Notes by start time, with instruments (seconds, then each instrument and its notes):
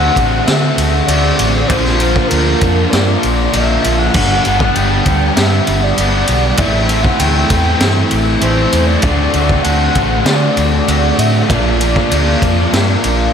Already playing: overdriven electric guitar D3 A3 C4 D4 F#4, soft synth lead F#5
0.15 fingered electric bass A1, overdriven electric guitar A3 C4 F#4, kick, ride
0.46 overdriven electric guitar D3 A3 C4 F#4, fingered electric bass D3, soft synth lead E5, snare, ride
0.78 fingered electric bass D2, ride
1.07 fingered electric bass D2, overdriven electric guitar D3 A3 C4, soft synth lead D5, ride
1.11 overdriven electric guitar F#4
1.39 fingered electric bass A1, overdriven electric guitar A3 C4 F#4, ride
1.68 fingered electric bass A#1, overdriven electric guitar A#2 D3 F3 A#3 D4 F4, soft synth lead C5, kick, ride
1.85 snare
2.00 overdriven electric guitar F3 A#3 D4 F4, ride
2.16 kick
2.28 fingered electric bass D2, overdriven electric guitar D3 A#3 D4, soft synth lead A#4, ride
2.33 overdriven electric guitar F3 F4
2.61 fingered electric bass F2, overdriven electric guitar A#3 D4 F4, kick, ride
2.90 fingered electric bass G2, overdriven electric guitar A#2 D3 F3, soft synth lead D5, snare, ride
2.95 overdriven electric guitar A#3 D4
3.23 fingered electric bass A#1, ride
3.50 overdriven electric guitar D3 F3 A#3, soft synth lead E5, ride
3.54 fingered electric bass A#1, overdriven electric guitar D4 F4
3.84 fingered electric bass A#1, overdriven electric guitar A#3 D4 F4, ride
3.98 soft synth lead F#5
4.14 fingered electric bass G1, overdriven electric guitar G2 D3 G3 B3 D4 G4, kick, crash
4.45 fingered electric bass G1, overdriven electric guitar G3 B3 D4 G4, ride
4.60 kick
4.75 fingered electric bass G1, overdriven electric guitar D3 G3 B3 D4 G4, soft synth lead G5, ride
5.05 fingered electric bass D2, overdriven electric guitar G3 B3 D4 G4, kick, ride
5.35 overdriven electric guitar G2 D3 G3 B3 D4, fingered electric bass G2, soft synth lead E5, snare, ride
5.67 fingered electric bass G1, ride
5.84 soft synth lead D5
5.97 fingered electric bass G1, overdriven electric guitar D3 G3 B3 D4 G4, ride
6.27 fingered electric bass B1, overdriven electric guitar G3 B3 D4 G4, ride
6.57 fingered electric bass A1, overdriven electric guitar A2 E3 A3 C4 E4, soft synth lead E5, kick, ride
6.89 overdriven electric guitar A3 C4 E4, ride
7.03 soft synth lead F#5, kick
7.19 fingered electric bass D2, overdriven electric guitar E3 A3 C4, soft synth lead G5, ride
7.23 overdriven electric guitar E4
7.50 fingered electric bass E2, overdriven electric guitar A3 C4 E4, kick, ride
7.79 fingered electric bass G2, overdriven electric guitar A2 E3 A3 C4 E4, snare, ride
8.11 fingered electric bass A1, ride
8.41 fingered electric bass A1, overdriven electric guitar E3 A3 C4 E4, soft synth lead C5, ride
8.72 fingered electric bass E2, overdriven electric guitar A3 C4 E4, ride
8.86 soft synth lead D5
9.02 fingered electric bass D2, overdriven electric guitar D3 A3 C4 F#4, kick, ride
9.06 overdriven electric guitar D4
9.34 fingered electric bass D2, overdriven electric guitar A3 C4 F#4, ride
9.49 kick
9.63 fingered electric bass D2, overdriven electric guitar D3 A3 C4, soft synth lead F#5, ride
9.67 overdriven electric guitar F#4
9.94 fingered electric bass A1, overdriven electric guitar A3 C4 F#4, kick, ride
10.24 overdriven electric guitar D3 A3 C4 F#4, fingered electric bass D3, soft synth lead D5, snare, ride
10.57 fingered electric bass D2, ride
10.87 fingered electric bass D2, overdriven electric guitar D3 A3 C4 F#4, ride
11.17 fingered electric bass A2, overdriven electric guitar A3 C4 F#4, soft synth lead E5, ride
11.48 fingered electric bass A#1, overdriven electric guitar A#2 D3 F3 A#3 D4 F4, soft synth lead D5, kick, ride
11.80 overdriven electric guitar A#3 D4 F4, ride
11.96 kick
12.10 fingered electric bass D2, overdriven electric guitar D3 F3 A#3 D4 F4, ride
12.41 fingered electric bass F2, overdriven electric guitar A#3 D4 F4, kick, ride
12.71 fingered electric bass G2, overdriven electric guitar A#2 F3 A#3 D4 F4, snare, ride
13.04 fingered electric bass A#1, ride